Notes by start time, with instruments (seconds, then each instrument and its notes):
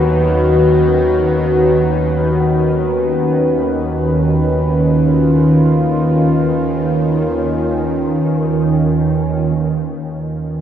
Already playing: synth drone D#2 D#3, ambient pad D#3 C#4 F#4 B4
4.01 ambient pad F4
9.59 synth drone D#2 D#3